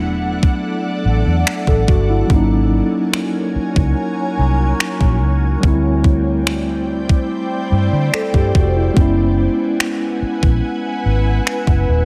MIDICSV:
0, 0, Header, 1, 6, 480
1, 0, Start_track
1, 0, Tempo, 833333
1, 1325, Time_signature, 4, 2, 24, 8
1, 6941, End_track
2, 0, Start_track
2, 0, Title_t, "Ambient pad"
2, 0, Program_c, 0, 92
2, 0, Note_on_c, 0, 64, 69
2, 0, Note_on_c, 0, 69, 64
2, 0, Note_on_c, 0, 74, 64
2, 0, Note_on_c, 0, 78, 82
2, 1302, Note_off_c, 0, 64, 0
2, 1303, Note_off_c, 0, 78, 0
2, 1306, Note_off_c, 0, 69, 0
2, 1306, Note_off_c, 0, 74, 0
2, 1326, Note_on_c, 0, 66, 67
2, 1326, Note_on_c, 0, 73, 65
2, 1326, Note_on_c, 0, 80, 79
2, 1327, Note_on_c, 0, 70, 67
2, 3226, Note_off_c, 0, 66, 0
2, 3226, Note_off_c, 0, 70, 0
2, 3226, Note_off_c, 0, 73, 0
2, 3226, Note_off_c, 0, 80, 0
2, 3242, Note_on_c, 0, 64, 70
2, 3242, Note_on_c, 0, 74, 62
2, 3243, Note_on_c, 0, 72, 66
2, 3243, Note_on_c, 0, 79, 75
2, 5144, Note_off_c, 0, 64, 0
2, 5144, Note_off_c, 0, 74, 0
2, 5144, Note_off_c, 0, 79, 0
2, 5145, Note_off_c, 0, 72, 0
2, 5163, Note_on_c, 0, 78, 67
2, 5163, Note_on_c, 0, 80, 78
2, 5164, Note_on_c, 0, 71, 68
2, 5165, Note_on_c, 0, 64, 72
2, 6941, Note_off_c, 0, 64, 0
2, 6941, Note_off_c, 0, 71, 0
2, 6941, Note_off_c, 0, 78, 0
2, 6941, Note_off_c, 0, 80, 0
2, 6941, End_track
3, 0, Start_track
3, 0, Title_t, "Tine electric piano"
3, 0, Program_c, 1, 4
3, 0, Control_c, 1, 64, 127
3, 0, Note_on_c, 1, 54, 66
3, 0, Note_on_c, 1, 57, 62
3, 0, Note_on_c, 1, 59, 61
3, 0, Note_on_c, 1, 62, 74
3, 969, Note_on_c, 1, 69, 61
3, 1081, Note_off_c, 1, 69, 0
3, 1089, Note_on_c, 1, 66, 64
3, 1201, Note_off_c, 1, 66, 0
3, 1209, Note_on_c, 1, 64, 64
3, 1293, Note_off_c, 1, 54, 0
3, 1307, Note_off_c, 1, 59, 0
3, 1308, Note_on_c, 1, 54, 68
3, 1314, Note_off_c, 1, 62, 0
3, 1319, Note_off_c, 1, 57, 0
3, 1321, Note_on_c, 1, 58, 61
3, 1333, Control_c, 1, 64, 0
3, 1336, Note_on_c, 1, 61, 64
3, 1350, Note_on_c, 1, 63, 78
3, 1420, Control_c, 1, 64, 127
3, 1435, Note_off_c, 1, 64, 0
3, 3213, Note_off_c, 1, 54, 0
3, 3220, Note_off_c, 1, 58, 0
3, 3227, Note_off_c, 1, 61, 0
3, 3229, Note_on_c, 1, 55, 69
3, 3234, Note_off_c, 1, 63, 0
3, 3242, Note_on_c, 1, 57, 59
3, 3253, Control_c, 1, 64, 0
3, 3257, Note_on_c, 1, 60, 62
3, 3270, Note_on_c, 1, 64, 75
3, 3347, Control_c, 1, 64, 127
3, 4674, Note_off_c, 1, 64, 0
3, 4691, Note_on_c, 1, 69, 61
3, 4802, Note_off_c, 1, 69, 0
3, 4810, Note_on_c, 1, 67, 62
3, 4922, Note_off_c, 1, 67, 0
3, 4929, Note_on_c, 1, 66, 61
3, 5041, Note_off_c, 1, 66, 0
3, 5051, Note_on_c, 1, 64, 60
3, 5134, Note_off_c, 1, 55, 0
3, 5140, Note_off_c, 1, 57, 0
3, 5148, Note_off_c, 1, 60, 0
3, 5148, Note_on_c, 1, 56, 65
3, 5162, Note_on_c, 1, 59, 63
3, 5171, Control_c, 1, 64, 0
3, 5176, Note_on_c, 1, 61, 63
3, 5184, Note_off_c, 1, 64, 0
3, 5191, Note_on_c, 1, 64, 73
3, 5273, Control_c, 1, 64, 127
3, 6941, Note_off_c, 1, 56, 0
3, 6941, Note_off_c, 1, 59, 0
3, 6941, Note_off_c, 1, 61, 0
3, 6941, Note_off_c, 1, 64, 0
3, 6941, End_track
4, 0, Start_track
4, 0, Title_t, "Fingered electric bass"
4, 0, Program_c, 2, 33
4, 0, Note_on_c, 2, 28, 101
4, 222, Note_off_c, 2, 28, 0
4, 606, Note_on_c, 2, 33, 82
4, 700, Note_off_c, 2, 33, 0
4, 726, Note_on_c, 2, 40, 98
4, 821, Note_off_c, 2, 40, 0
4, 965, Note_on_c, 2, 33, 92
4, 1060, Note_off_c, 2, 33, 0
4, 1085, Note_on_c, 2, 31, 85
4, 1275, Note_off_c, 2, 31, 0
4, 1325, Note_on_c, 2, 32, 101
4, 1611, Note_off_c, 2, 32, 0
4, 2168, Note_on_c, 2, 37, 86
4, 2262, Note_off_c, 2, 37, 0
4, 2527, Note_on_c, 2, 36, 88
4, 2716, Note_off_c, 2, 36, 0
4, 2885, Note_on_c, 2, 34, 77
4, 3006, Note_off_c, 2, 34, 0
4, 3006, Note_on_c, 2, 37, 79
4, 3196, Note_off_c, 2, 37, 0
4, 3245, Note_on_c, 2, 38, 113
4, 4062, Note_off_c, 2, 38, 0
4, 4445, Note_on_c, 2, 43, 85
4, 4540, Note_off_c, 2, 43, 0
4, 4565, Note_on_c, 2, 50, 93
4, 4660, Note_off_c, 2, 50, 0
4, 4805, Note_on_c, 2, 43, 77
4, 4900, Note_off_c, 2, 43, 0
4, 4926, Note_on_c, 2, 29, 82
4, 5116, Note_off_c, 2, 29, 0
4, 5166, Note_on_c, 2, 30, 107
4, 5451, Note_off_c, 2, 30, 0
4, 6007, Note_on_c, 2, 34, 79
4, 6101, Note_off_c, 2, 34, 0
4, 6367, Note_on_c, 2, 32, 75
4, 6556, Note_off_c, 2, 32, 0
4, 6725, Note_on_c, 2, 30, 78
4, 6820, Note_off_c, 2, 30, 0
4, 6847, Note_on_c, 2, 27, 84
4, 6941, Note_off_c, 2, 27, 0
4, 6941, End_track
5, 0, Start_track
5, 0, Title_t, "Muted fingered electric bass strokes"
5, 2047, Note_on_c, 9, 29, 46
5, 2104, Note_off_c, 9, 29, 0
5, 5887, Note_on_c, 9, 29, 47
5, 5944, Note_off_c, 9, 29, 0
5, 6941, End_track
6, 0, Start_track
6, 0, Title_t, "Drums"
6, 247, Note_on_c, 9, 36, 82
6, 305, Note_off_c, 9, 36, 0
6, 846, Note_on_c, 9, 26, 97
6, 904, Note_off_c, 9, 26, 0
6, 964, Note_on_c, 9, 36, 79
6, 1021, Note_off_c, 9, 36, 0
6, 1084, Note_on_c, 9, 36, 85
6, 1142, Note_off_c, 9, 36, 0
6, 1325, Note_on_c, 9, 36, 107
6, 1382, Note_off_c, 9, 36, 0
6, 1806, Note_on_c, 9, 26, 115
6, 1863, Note_off_c, 9, 26, 0
6, 2167, Note_on_c, 9, 36, 82
6, 2224, Note_off_c, 9, 36, 0
6, 2766, Note_on_c, 9, 26, 96
6, 2824, Note_off_c, 9, 26, 0
6, 2884, Note_on_c, 9, 36, 79
6, 2941, Note_off_c, 9, 36, 0
6, 3245, Note_on_c, 9, 36, 105
6, 3302, Note_off_c, 9, 36, 0
6, 3481, Note_on_c, 9, 36, 85
6, 3539, Note_off_c, 9, 36, 0
6, 3726, Note_on_c, 9, 26, 120
6, 3784, Note_off_c, 9, 26, 0
6, 4086, Note_on_c, 9, 36, 81
6, 4144, Note_off_c, 9, 36, 0
6, 4686, Note_on_c, 9, 26, 95
6, 4744, Note_off_c, 9, 26, 0
6, 4804, Note_on_c, 9, 36, 80
6, 4861, Note_off_c, 9, 36, 0
6, 4925, Note_on_c, 9, 36, 86
6, 4982, Note_off_c, 9, 36, 0
6, 5165, Note_on_c, 9, 36, 107
6, 5222, Note_off_c, 9, 36, 0
6, 5646, Note_on_c, 9, 26, 114
6, 5703, Note_off_c, 9, 26, 0
6, 6007, Note_on_c, 9, 36, 83
6, 6064, Note_off_c, 9, 36, 0
6, 6606, Note_on_c, 9, 26, 94
6, 6664, Note_off_c, 9, 26, 0
6, 6724, Note_on_c, 9, 36, 78
6, 6781, Note_off_c, 9, 36, 0
6, 6941, End_track
0, 0, End_of_file